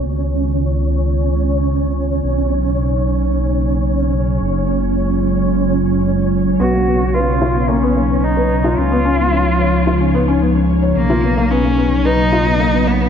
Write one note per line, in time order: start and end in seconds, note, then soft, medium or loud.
0.00 2.19 D#3 medium
0.00 2.19 C#4 medium
0.00 13.09 C#4 medium
0.00 13.09 C#5 medium
0.05 2.21 C#2 medium
0.05 2.21 G#3 medium
0.05 4.38 B3 medium
0.05 2.21 F4 medium
2.23 4.39 B1 medium
2.23 8.74 C#3 medium
2.23 8.74 F#3 medium
2.23 6.56 A#3 medium
2.23 4.39 D#4 medium
4.41 6.57 F#1 medium
4.41 6.57 G#3 medium
4.41 6.57 F4 medium
6.60 8.75 B1 medium
6.60 8.76 A#3 medium
6.60 10.92 B3 medium
6.60 6.70 B3 medium
6.60 13.09 D#4 medium
6.60 7.16 F#4 loud
6.73 6.79 A#3 medium
6.87 6.97 B3 medium
7.14 7.70 F4 medium
7.14 7.27 B4 medium
7.42 7.52 F4 medium
7.55 7.65 B3 medium
7.69 7.75 A#3 medium
7.69 8.25 C#4 medium
7.82 7.93 B3 medium
7.96 8.02 A#3 medium
8.10 8.20 B3 medium
8.23 8.79 D#4 medium
8.37 8.50 B4 medium
8.64 8.74 F4 medium
8.78 10.93 C#2 medium
8.78 13.09 C#3 medium
8.78 10.94 F3 medium
8.78 10.94 G#3 medium
8.78 8.88 C#4 medium
8.78 10.42 F4 loud
8.91 8.98 B3 medium
9.05 9.15 C#4 medium
9.19 9.25 B3 medium
9.32 9.43 C#4 medium
9.60 9.73 C#5 medium
9.87 9.97 F4 medium
10.01 10.11 C#4 medium
10.14 10.20 B3 medium
10.28 10.38 C#4 medium
10.42 10.48 B3 medium
10.55 10.65 C#4 medium
10.82 10.95 C#5 medium
10.96 13.09 B1 medium
10.96 13.09 B2 medium
10.96 13.09 F#3 medium
10.96 11.52 A#3 loud
10.96 13.09 A#3 medium
11.10 11.20 F4 medium
11.23 11.33 B3 medium
11.37 11.43 A#3 medium
11.51 11.61 B3 medium
11.51 12.07 C#4 loud
11.64 11.70 A#3 medium
11.78 11.88 B3 medium
12.05 12.89 D#4 loud
12.05 12.18 B4 medium
12.32 12.43 F4 medium
12.46 12.56 B3 medium
12.60 12.66 A#3 medium
12.73 12.84 B3 medium
12.87 12.93 A#3 medium
12.87 13.09 B3 medium
13.01 13.09 B3 medium